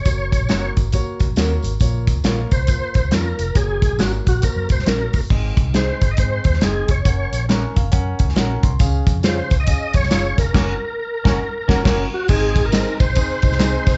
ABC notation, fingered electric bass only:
X:1
M:4/4
L:1/16
Q:"Swing" 1/4=137
K:Abmix
V:1 name="Fingered electric bass" clef=bass
G,,,3 B,,, G,,,2 A,,,3 z G,,, B,,, E,,2 A,,,2 | B,,,3 D,, B,,,2 C,,3 z B,,, D,, F,,2 F,,,2 | G,,,3 B,,, A,,,2 B,,,2 z G,, G,,, C,, B,,,2 G,,, z | A,,,2 C,,4 A,,,2 A,,2 E,,2 G,,,2 F,,,2 |
G,,,2 B,,,4 G,,,2 G,,2 D,,2 B,,,2 C,,2 | D,,2 F,,4 D,,3 z F,, C,, G,,,2 F,,,2 | G,,,2 z4 G,,,2 z2 G,,,2 G,,,2 z2 | A,,,4- A,,, z C,, B,,, z2 C,,4 F,,,2 |]